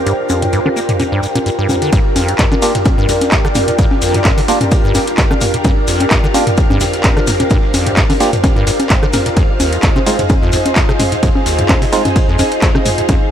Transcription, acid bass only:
0.06 0.13 G2 loud
0.30 0.44 F2 medium
0.42 0.48 G2 medium
0.53 0.60 G2 loud
0.66 0.69 D3 loud
0.76 0.80 A#3 medium
0.89 0.92 A#2 medium
1.00 1.04 A#2 medium
1.12 1.21 G2 loud
1.23 1.27 G2 medium
1.35 1.39 A#2 loud
1.46 1.50 G2 loud
1.59 1.67 G2 loud
1.69 1.76 G2 medium
1.82 1.91 D3 medium
1.93 1.99 G2 loud
2.16 2.30 F2 medium
2.29 2.34 G2 medium
2.39 2.46 G2 loud
2.52 2.55 D3 loud
2.62 2.66 A#3 medium
2.75 2.78 A#2 medium
2.85 2.90 A#2 medium
2.98 3.07 G2 loud
3.09 3.13 G2 loud
3.32 3.39 G2 medium
3.45 3.48 D3 loud
3.55 3.59 A#3 medium
3.68 3.71 A#2 medium
3.79 3.85 G2 loud
4.02 4.16 F2 medium
4.14 4.20 G2 medium
4.25 4.32 G2 loud
4.38 4.41 D3 loud
4.48 4.52 A#3 medium
4.61 4.64 A#2 medium
4.72 4.76 A#2 medium
4.84 4.93 G2 loud
4.95 4.99 G2 loud
5.18 5.25 G2 medium
5.31 5.34 D3 loud
5.41 5.46 A#3 medium
5.54 5.58 A#2 medium
5.65 5.72 G2 loud
5.88 6.02 F2 medium
6.00 6.06 G2 medium
6.11 6.18 G2 loud
6.24 6.27 D3 loud
6.34 6.39 A#3 medium
6.47 6.51 A#2 medium
6.58 6.62 A#2 medium
6.70 6.79 G2 loud
6.81 6.85 G2 loud
7.04 7.11 G2 medium
7.17 7.20 D3 loud
7.27 7.32 A#3 medium
7.40 7.44 A#2 medium
7.51 7.58 G2 loud
7.74 7.88 F2 medium
7.87 7.92 G2 medium
7.97 8.04 G2 loud
8.10 8.13 D3 loud
8.20 8.25 A#3 medium
8.33 8.37 A#2 medium
8.44 8.48 A#2 medium
8.56 8.65 G2 loud
8.67 8.71 G2 loud
8.90 8.97 G2 medium
9.03 9.06 D3 loud
9.13 9.18 A#3 medium
9.26 9.30 A#2 medium
9.37 9.44 F2 loud
9.60 9.74 D#2 medium
9.73 9.78 F2 medium
9.83 9.90 F2 loud
9.96 9.99 C3 loud
10.07 10.11 G#3 medium
10.19 10.23 G#2 medium
10.30 10.34 G#2 medium
10.42 10.51 F2 loud
10.53 10.57 F2 loud
10.76 10.83 F2 medium
10.89 10.92 C3 loud
11.00 11.04 G#3 medium
11.12 11.16 G#2 medium
11.23 11.30 F2 loud
11.46 11.60 D#2 medium
11.59 11.64 F2 medium
11.69 11.76 F2 loud
11.82 11.85 C3 loud
11.93 11.97 G#3 medium
12.05 12.09 G#2 medium
12.16 12.20 G#2 medium
12.28 12.37 F2 loud
12.39 12.43 F2 loud
12.62 12.69 F2 medium
12.75 12.78 C3 loud
12.86 12.90 G#3 medium
12.98 13.02 G#2 medium
13.09 13.16 F2 loud

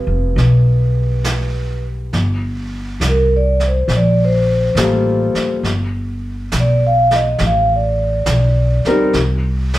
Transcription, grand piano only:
0.00 2.13 G3 soft
0.00 2.13 B3 soft
0.00 2.14 F4 soft
0.00 2.14 G#4 medium
4.78 5.65 G3 medium
4.78 5.65 A#3 soft
4.78 5.65 F4 soft
4.78 5.65 A4 medium
8.87 9.12 G3 medium
8.87 9.12 C4 medium
8.87 9.12 D#4 medium
8.87 9.12 A#4 medium

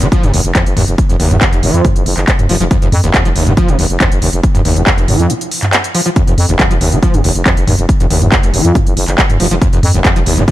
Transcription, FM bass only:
0.02 0.09 F1 medium
0.23 0.30 F1 medium
0.33 0.41 F1 medium
0.45 0.52 F1 medium
0.66 0.74 F#1 medium
0.77 0.85 F1 loud
0.88 0.95 F1 medium
1.10 1.17 F1 medium
1.20 1.28 F1 loud
1.31 1.38 F1 medium
1.53 1.60 F1 medium
1.63 1.71 F1 loud
1.74 1.81 F2 medium
1.96 2.03 F#1 medium
2.06 2.14 F#1 loud
2.17 2.25 F#1 medium
2.39 2.46 F1 medium
2.49 2.57 F1 loud
2.60 2.68 F1 loud
2.82 2.89 F1 medium
2.92 3.00 F2 loud
3.04 3.11 F1 medium
3.25 3.33 F1 medium
3.35 3.44 F1 loud
3.47 3.54 F1 medium
3.68 3.76 F1 medium
3.79 3.87 F1 medium
3.90 3.97 F1 medium
4.12 4.19 F#1 medium
4.22 4.30 F1 loud
4.33 4.41 F1 loud
4.55 4.62 F1 medium
4.65 4.73 F1 loud
4.76 4.84 F1 medium
4.98 5.05 F1 medium
5.08 5.16 F1 loud
5.20 5.27 F2 medium
6.27 6.35 F1 medium
6.38 6.46 F2 loud
6.49 6.56 F1 medium
6.71 6.78 F1 medium
6.81 6.89 F1 loud
6.92 7.00 F1 medium
7.14 7.21 F1 medium
7.24 7.32 F1 loud
7.35 7.43 F1 medium
7.57 7.64 F#1 medium
7.67 7.75 F1 loud
7.79 7.86 F1 loud
8.00 8.07 F1 medium
8.10 8.18 F1 loud
8.22 8.29 F1 medium
8.43 8.51 F1 medium
8.54 8.62 F1 loud
8.65 8.72 F2 medium
8.86 8.94 F#1 medium
8.97 9.05 F#1 loud
9.08 9.15 F#1 medium
9.30 9.37 F1 medium
9.40 9.48 F1 loud
9.51 9.59 F1 medium
9.73 9.80 F1 medium
9.83 9.91 F2 medium
9.94 10.02 F1 medium
10.16 10.23 F1 medium
10.26 10.34 F1 loud
10.38 10.45 F1 medium

